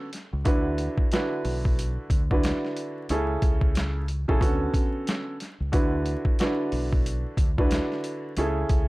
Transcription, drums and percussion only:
0.13 snare, closed hi-hat
0.45 kick, closed hi-hat
0.78 closed hi-hat
0.98 kick
1.12 snare, closed hi-hat
1.45 open hi-hat
1.65 kick
1.79 closed hi-hat
2.10 kick, closed hi-hat
2.31 kick
2.43 snare, closed hi-hat
2.65 snare
2.77 closed hi-hat
3.09 closed hi-hat
3.42 kick, closed hi-hat
3.61 kick
3.75 snare, closed hi-hat
4.08 closed hi-hat
4.29 kick
4.41 kick, closed hi-hat
4.74 kick, closed hi-hat
5.07 snare, closed hi-hat
5.40 snare, closed hi-hat
5.73 kick, closed hi-hat
6.06 closed hi-hat
6.25 kick
6.39 snare, closed hi-hat
6.72 open hi-hat
6.93 kick
7.06 closed hi-hat
7.37 kick, closed hi-hat
7.58 kick
7.71 snare, closed hi-hat
7.92 snare
8.04 closed hi-hat
8.37 closed hi-hat
8.69 kick, closed hi-hat

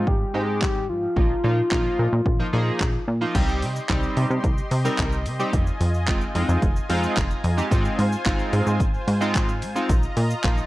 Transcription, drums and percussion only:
0.07 kick
0.62 kick, clap
1.17 kick
1.71 kick, clap
2.26 kick
2.80 kick, clap
3.35 kick, closed hi-hat, crash, shaker
3.48 shaker
3.62 open hi-hat, shaker
3.76 shaker
3.89 kick, clap, closed hi-hat, shaker
4.03 shaker
4.17 open hi-hat, shaker
4.31 shaker
4.44 kick, closed hi-hat, shaker
4.58 shaker
4.71 open hi-hat, shaker
4.85 shaker
4.98 kick, clap, closed hi-hat, shaker
5.12 shaker
5.26 open hi-hat, shaker
5.39 shaker
5.53 kick, closed hi-hat, shaker
5.67 shaker
5.81 open hi-hat, shaker
5.94 shaker
6.07 kick, clap, closed hi-hat, shaker
6.21 shaker
6.35 open hi-hat, shaker
6.49 shaker
6.62 kick, closed hi-hat, shaker
6.76 shaker
6.89 open hi-hat, shaker
7.03 shaker
7.17 kick, clap, closed hi-hat, shaker
7.31 shaker
7.44 open hi-hat, shaker
7.58 shaker
7.71 kick, closed hi-hat, shaker
7.85 shaker
7.99 open hi-hat, shaker
8.12 shaker
8.26 kick, clap, closed hi-hat, shaker
8.39 shaker
8.53 open hi-hat, shaker
8.67 shaker
8.80 kick, closed hi-hat, shaker
8.94 shaker
9.08 open hi-hat, shaker
9.22 shaker
9.35 kick, clap, closed hi-hat, shaker
9.49 shaker
9.62 open hi-hat, shaker
9.76 shaker
9.89 kick, closed hi-hat, shaker
10.03 shaker
10.17 open hi-hat, shaker
10.30 shaker
10.44 kick, clap, closed hi-hat, shaker
10.58 shaker

